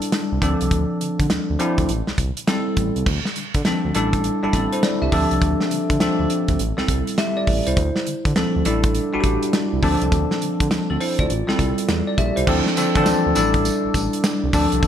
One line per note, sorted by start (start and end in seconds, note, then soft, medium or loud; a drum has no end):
0.00 0.20 G3 medium
0.00 0.20 D4 medium
0.00 0.20 E4 medium
0.00 0.20 A4 medium
0.00 closed hi-hat medium
0.12 snare loud
0.12 closed hi-hat medium
0.32 0.39 C2 loud
0.42 0.55 D2 loud
0.42 1.37 F3 medium
0.42 1.38 C4 medium
0.42 1.38 D4 medium
0.42 1.38 A4 medium
0.42 kick medium
0.42 closed hi-hat medium
0.61 0.69 C2 medium
0.61 closed hi-hat medium
0.71 0.84 D2 loud
0.71 kick loud
0.71 closed hi-hat medium
1.01 1.09 D3 medium
1.01 closed hi-hat medium
1.20 1.27 D3 medium
1.20 kick medium
1.20 closed hi-hat medium
1.30 1.38 D2 soft
1.30 snare loud
1.30 closed hi-hat medium
1.50 1.57 D2 medium
1.59 1.89 F3 loud
1.59 1.89 C4 medium
1.59 1.89 D4 medium
1.59 1.89 E4 loud
1.59 closed hi-hat medium
1.78 1.86 D2 medium
1.78 kick loud
1.78 closed hi-hat medium
1.89 2.02 A1 loud
1.89 closed hi-hat medium
2.07 2.12 C2 medium
2.07 snare medium
2.18 2.31 C2 medium
2.18 kick medium
2.18 closed hi-hat medium
2.37 closed hi-hat medium
2.47 2.96 G3 medium
2.47 2.96 C4 medium
2.47 2.96 E4 medium
2.47 2.97 A4 loud
2.47 snare loud
2.47 closed hi-hat medium
2.77 2.90 A1 loud
2.77 kick loud
2.77 closed hi-hat medium
2.96 3.03 C2 medium
2.96 closed hi-hat medium
3.06 3.20 D2 loud
3.06 kick loud
3.06 crash medium
3.25 snare medium
3.36 3.44 D3 medium
3.36 closed hi-hat medium
3.54 3.62 D3 medium
3.54 kick medium
3.54 closed hi-hat medium
3.65 3.73 D2 soft
3.65 3.95 F3 medium
3.65 3.95 C4 medium
3.65 3.94 D4 medium
3.65 3.95 A4 medium
3.65 snare loud
3.65 closed hi-hat medium
3.84 3.92 D2 medium
3.95 4.29 A1 medium
3.95 4.32 G3 medium
3.95 4.32 D4 medium
3.95 4.32 E4 medium
3.95 4.32 A4 medium
3.95 closed hi-hat medium
4.13 kick medium
4.13 closed hi-hat medium
4.24 closed hi-hat medium
4.43 4.47 A1 soft
4.43 4.98 G3 medium
4.43 4.54 D4 medium
4.43 4.54 E4 medium
4.43 4.53 A4 medium
4.53 4.67 A1 medium
4.53 4.72 C4 medium
4.53 4.72 A4 medium
4.53 kick medium
4.53 closed hi-hat medium
4.73 4.83 E4 medium
4.73 4.82 C5 medium
4.73 closed hi-hat medium
4.83 5.01 D5 medium
4.83 snare loud
4.83 closed hi-hat medium
5.02 5.09 C2 medium
5.02 5.30 G4 medium
5.02 5.30 E5 medium
5.12 5.26 D2 loud
5.12 5.86 F3 medium
5.12 5.86 C4 medium
5.12 5.86 D4 medium
5.12 5.86 A4 loud
5.12 kick medium
5.12 open hi-hat medium
5.31 5.39 C2 loud
5.31 closed hi-hat medium
5.42 5.55 D2 loud
5.42 kick loud
5.42 closed hi-hat medium
5.60 snare medium
5.71 5.79 D3 medium
5.71 closed hi-hat medium
5.90 5.98 D3 medium
5.90 kick medium
5.90 closed hi-hat medium
6.00 6.08 D2 soft
6.00 6.57 F3 medium
6.00 6.57 C4 medium
6.00 6.57 D4 medium
6.00 6.57 A4 medium
6.00 snare loud
6.00 closed hi-hat medium
6.19 6.27 D2 medium
6.30 closed hi-hat medium
6.48 6.56 D2 medium
6.48 kick loud
6.48 closed hi-hat medium
6.59 6.73 A1 loud
6.59 closed hi-hat medium
6.77 6.83 C2 soft
6.77 7.32 G3 medium
6.77 7.33 C4 medium
6.77 7.18 E4 medium
6.77 7.18 A4 medium
6.77 snare medium
6.88 7.02 C2 medium
6.88 kick medium
6.88 closed hi-hat medium
7.07 closed hi-hat medium
7.18 7.36 G4 medium
7.18 7.36 E5 medium
7.18 snare loud
7.18 closed hi-hat medium
7.37 7.65 D5 medium
7.47 7.61 A1 loud
7.47 kick loud
7.47 open hi-hat medium
7.67 7.74 C2 medium
7.67 7.95 E4 medium
7.67 7.94 C5 medium
7.67 closed hi-hat medium
7.77 7.90 D2 loud
7.77 kick loud
7.77 closed hi-hat medium
7.96 snare medium
8.07 8.14 D3 soft
8.07 closed hi-hat medium
8.25 8.33 D3 medium
8.25 kick medium
8.25 closed hi-hat medium
8.36 8.44 D2 soft
8.36 8.65 F3 medium
8.36 8.65 C4 medium
8.36 8.64 D4 medium
8.36 8.65 A4 medium
8.36 snare loud
8.36 closed hi-hat medium
8.56 8.63 D2 loud
8.65 8.99 A1 medium
8.65 9.02 G3 medium
8.65 9.02 D4 medium
8.65 9.02 E4 medium
8.65 9.03 A4 loud
8.65 closed hi-hat medium
8.83 kick loud
8.83 closed hi-hat medium
8.95 closed hi-hat medium
9.13 9.18 A1 soft
9.13 9.68 G3 medium
9.13 9.68 D4 medium
9.13 9.68 E4 medium
9.13 9.18 F#4 medium
9.21 9.37 A1 medium
9.21 9.72 G4 medium
9.21 kick medium
9.21 closed hi-hat medium
9.43 closed hi-hat medium
9.53 snare loud
9.53 closed hi-hat medium
9.73 9.80 C2 medium
9.82 9.96 D2 loud
9.82 10.56 F3 loud
9.82 10.57 C4 medium
9.82 10.57 D4 medium
9.82 10.57 A4 loud
9.82 kick medium
9.82 open hi-hat medium
10.02 10.09 C2 loud
10.02 closed hi-hat medium
10.12 10.25 D2 loud
10.12 kick loud
10.12 closed hi-hat medium
10.31 snare medium
10.42 10.49 D3 medium
10.42 closed hi-hat medium
10.60 10.68 D3 medium
10.60 kick loud
10.60 closed hi-hat medium
10.71 10.79 D2 soft
10.71 snare loud
10.71 closed hi-hat medium
10.90 10.97 D2 loud
10.90 11.00 C4 medium
10.90 11.00 A4 medium
11.00 11.19 E4 medium
11.00 11.18 C5 medium
11.00 open hi-hat medium
11.19 11.27 D2 loud
11.19 11.47 F4 medium
11.19 11.47 D5 medium
11.19 kick medium
11.19 closed hi-hat medium
11.30 11.43 A1 loud
11.30 closed hi-hat medium
11.47 11.53 C2 soft
11.47 12.03 G3 medium
11.47 12.03 C4 medium
11.47 11.59 E4 medium
11.47 11.59 A4 medium
11.47 snare medium
11.59 11.72 C2 loud
11.59 kick medium
11.59 closed hi-hat medium
11.78 closed hi-hat medium
11.89 12.02 E2 medium
11.89 snare loud
11.89 closed hi-hat medium
12.07 12.18 D5 medium
12.18 12.31 A#1 loud
12.18 12.36 G4 medium
12.18 12.36 E5 medium
12.18 kick medium
12.18 closed hi-hat medium
12.36 12.45 C2 medium
12.36 12.65 E4 medium
12.36 12.64 C5 medium
12.36 closed hi-hat medium
12.47 12.61 D2 loud
12.47 12.72 F3 loud
12.47 12.72 C4 medium
12.47 12.72 D4 medium
12.47 12.72 A4 loud
12.47 kick loud
12.47 crash loud
12.66 snare medium
12.77 12.85 D3 medium
12.77 12.91 F3 medium
12.77 12.91 C4 medium
12.77 12.91 D4 medium
12.77 12.92 A4 medium
12.77 closed hi-hat medium
12.77 tambourine medium
12.95 13.03 D3 medium
12.95 13.00 E3 medium
12.95 13.36 C4 medium
12.95 13.35 D4 medium
12.95 13.36 A4 loud
12.95 kick loud
12.95 closed hi-hat medium
13.02 13.39 F3 medium
13.02 snare loud
13.02 closed hi-hat medium
13.02 tambourine medium
13.07 13.14 D2 soft
13.26 13.33 D2 loud
13.35 13.70 A1 medium
13.35 14.31 G3 medium
13.35 14.32 D4 medium
13.35 14.32 E4 medium
13.35 14.32 A4 medium
13.35 closed hi-hat medium
13.35 tambourine medium
13.54 kick loud
13.54 closed hi-hat medium
13.65 closed hi-hat medium
13.65 tambourine medium
13.85 13.89 A1 soft
13.94 14.08 A1 medium
13.94 kick medium
13.94 closed hi-hat medium
13.94 tambourine medium
14.13 closed hi-hat medium
14.24 snare loud
14.24 closed hi-hat medium
14.24 tambourine loud
14.44 14.51 C2 medium
14.53 14.67 D2 loud
14.53 14.87 F3 medium
14.53 14.87 C4 medium
14.53 14.87 D4 medium
14.53 14.87 A4 loud
14.53 kick loud
14.53 open hi-hat medium
14.53 tambourine medium
14.72 14.80 C2 medium
14.72 closed hi-hat medium
14.83 14.87 D2 loud
14.83 kick loud
14.83 closed hi-hat medium